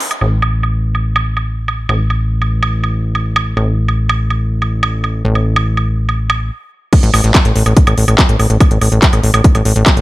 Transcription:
0.00 open hi-hat medium
0.11 closed hi-hat medium
0.11 high woodblock soft
0.21 1.87 A1 medium
0.21 high woodblock soft
0.42 high woodblock medium
0.63 high woodblock soft
0.95 high woodblock soft
1.16 high woodblock medium
1.37 high woodblock soft
1.68 high woodblock soft
1.89 3.55 A1 medium
1.89 high woodblock medium
2.10 high woodblock soft
2.42 high woodblock soft
2.63 high woodblock medium
2.84 high woodblock soft
3.15 high woodblock soft
3.36 high woodblock medium
3.57 5.23 A1 medium
3.57 high woodblock soft
3.88 high woodblock soft
4.09 high woodblock medium
4.30 high woodblock soft
4.62 high woodblock soft
4.83 high woodblock medium
5.04 high woodblock soft
5.25 6.51 A1 medium
5.35 high woodblock soft
5.56 high woodblock medium
5.77 high woodblock soft
6.09 high woodblock soft
6.30 high woodblock medium
6.93 kick loud
6.93 closed hi-hat medium
6.93 crash loud
6.93 high woodblock soft
7.03 7.11 A1 medium
7.03 closed hi-hat medium
7.14 7.21 A1 loud
7.14 open hi-hat loud
7.14 high woodblock medium
7.24 7.32 A1 medium
7.24 closed hi-hat medium
7.35 kick loud
7.35 clap loud
7.35 closed hi-hat medium
7.35 high woodblock soft
7.45 7.52 A1 medium
7.45 closed hi-hat medium
7.56 7.63 A1 loud
7.56 open hi-hat loud
7.66 7.73 A1 medium
7.66 closed hi-hat medium
7.66 high woodblock soft
7.77 kick loud
7.77 closed hi-hat medium
7.87 7.94 A1 medium
7.87 closed hi-hat medium
7.87 high woodblock medium
7.98 8.05 A1 loud
7.98 open hi-hat loud
8.08 8.15 A1 medium
8.08 closed hi-hat medium
8.08 high woodblock soft
8.19 kick loud
8.19 clap loud
8.19 closed hi-hat medium
8.29 8.36 A1 medium
8.29 closed hi-hat medium
8.39 8.47 A1 loud
8.39 open hi-hat medium
8.39 high woodblock soft
8.50 8.57 A1 medium
8.50 closed hi-hat medium
8.60 kick loud
8.60 closed hi-hat medium
8.60 high woodblock medium
8.71 8.78 A1 medium
8.71 closed hi-hat medium
8.81 8.89 A1 loud
8.81 open hi-hat loud
8.81 high woodblock soft
8.92 8.99 A1 medium
8.92 closed hi-hat medium
9.02 kick loud
9.02 clap loud
9.02 closed hi-hat medium
9.13 9.20 A1 medium
9.13 closed hi-hat medium
9.13 high woodblock soft
9.23 9.31 A1 loud
9.23 open hi-hat loud
9.34 9.41 A1 medium
9.34 closed hi-hat medium
9.34 high woodblock medium
9.44 kick loud
9.44 closed hi-hat medium
9.55 9.62 A1 medium
9.55 closed hi-hat medium
9.55 high woodblock soft
9.65 9.73 A1 loud
9.65 open hi-hat loud
9.76 9.83 A1 medium
9.76 closed hi-hat medium
9.86 kick loud
9.86 clap loud
9.86 closed hi-hat medium
9.86 high woodblock soft
9.97 10.01 A1 medium
9.97 closed hi-hat medium

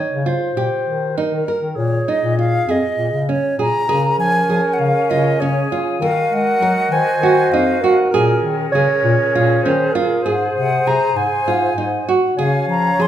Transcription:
0.00 0.21 D#4 medium
0.00 0.27 C#5 medium
0.10 0.34 C#3 medium
0.25 0.52 F4 medium
0.25 1.18 C5 medium
0.55 0.67 A#2 medium
0.55 1.08 G4 medium
0.85 1.21 D#3 medium
1.16 1.43 D#4 medium
1.16 1.77 A#4 medium
1.32 1.44 D#3 medium
1.48 1.73 A#4 medium
1.62 1.74 D#3 medium
1.75 2.01 A#2 medium
1.75 3.58 G#4 medium
1.75 2.11 C#5 medium
2.08 2.34 D#4 medium
2.08 2.38 D#5 medium
2.22 2.58 A#2 medium
2.39 2.64 F4 medium
2.39 2.72 F5 medium
2.67 2.80 F2 medium
2.67 3.20 G#4 medium
2.67 3.30 D#5 medium
2.97 3.10 A#2 medium
3.12 3.37 C#3 medium
3.29 3.55 C#4 medium
3.29 3.59 C#5 medium
3.57 3.70 A#2 medium
3.57 3.85 G#4 medium
3.57 4.17 A#5 medium
3.87 4.12 C#3 medium
3.87 6.00 C#4 medium
3.87 4.41 G#4 medium
3.87 5.41 A#4 medium
3.87 5.99 C#5 medium
3.87 8.09 G#5 medium
4.18 4.43 F3 medium
4.18 4.75 G#5 loud
4.48 4.61 F3 medium
4.48 5.01 G#4 medium
4.73 4.81 F#5 medium
4.79 4.92 C#3 medium
4.79 5.12 F5 medium
5.10 5.34 C#3 medium
5.10 5.37 F4 medium
5.10 5.42 D#5 medium
5.39 5.64 C#3 medium
5.39 5.67 C#4 medium
5.39 6.01 G#4 medium
5.39 5.86 C#5 medium
5.72 5.98 F4 medium
6.00 6.25 D#3 medium
6.00 8.12 F#4 medium
6.00 6.94 A#4 medium
6.00 6.53 A#4 medium
6.00 8.11 D#5 medium
6.00 6.35 F5 medium
6.30 6.55 G#3 medium
6.30 6.93 F#5 loud
6.60 6.73 F#3 medium
6.60 7.14 A#4 medium
6.90 7.03 D#3 loud
6.90 7.83 C5 medium
6.90 7.53 G#5 medium
7.20 7.45 D#3 medium
7.20 7.49 F#4 medium
7.51 7.76 F2 medium
7.51 7.79 D#4 medium
7.51 7.98 F5 medium
7.81 8.09 F#4 medium
7.81 8.10 A#4 medium
8.10 8.37 A#2 medium
8.10 10.23 C#4 medium
8.10 12.13 G#4 medium
8.10 8.65 G#4 medium
8.10 8.43 A#4 medium
8.10 10.23 A#4 medium
8.42 8.67 D#3 medium
8.72 8.85 C#3 medium
8.72 9.26 G#4 medium
8.72 9.65 C#5 loud
9.03 9.16 A#2 medium
9.35 9.59 A#2 medium
9.35 9.61 F4 medium
9.63 9.89 D#3 medium
9.63 9.91 C#4 medium
9.63 9.94 C5 loud
9.92 10.21 F4 medium
9.92 10.22 A#4 medium
10.22 10.49 G#2 medium
10.22 10.77 G#4 medium
10.22 12.02 C5 medium
10.22 12.14 C5 medium
10.22 12.09 G#5 medium
10.55 10.80 C3 medium
10.55 10.89 F#5 medium
10.86 10.98 C3 medium
10.86 11.38 G#4 medium
10.86 11.18 A#5 medium
11.16 11.28 G#2 medium
11.16 12.08 G#5 medium
11.46 11.70 G#2 medium
11.46 11.73 F4 medium
11.76 12.00 G#2 medium
11.76 12.03 D#4 medium
12.09 12.34 F#4 medium
12.37 12.61 C#3 medium
12.37 13.08 C#4 medium
12.37 12.89 G#4 medium
12.37 13.08 C#5 medium
12.37 13.08 F5 medium
12.37 12.66 G#5 medium
12.67 12.91 F3 medium
12.67 13.03 A#5 medium
12.98 13.08 F3 medium
12.98 13.08 G#4 medium
12.98 13.08 C6 medium

